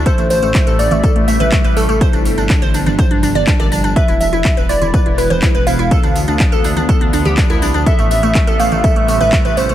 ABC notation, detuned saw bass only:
X:1
M:4/4
L:1/16
Q:1/4=123
K:Am
V:1 name="Detuned saw bass" clef=bass
z A,,, A,,, A,,, z A,,, A,,, A,,, z A,,, A,,, A,,, z A,,, A,,, A,,, | z G,,, G,,, G,,, z G,,, G,,, G,,, z G,,, G,,, G,,, z G,,, G,,, G,,, | z E,,, E,,, E,,, z E,,, E,,, E,,, z E,,, E,,, E,,, z E,,, E,,, E,,, | z D,, D,, D,, z D,, D,, D,, z D,, D,, D,, z D,, C,, D,, |
z A,,, A,,, A,,, z A,,, A,,, A,,, z A,,, A,,, A,,, z A,,, A,,, A,,, |]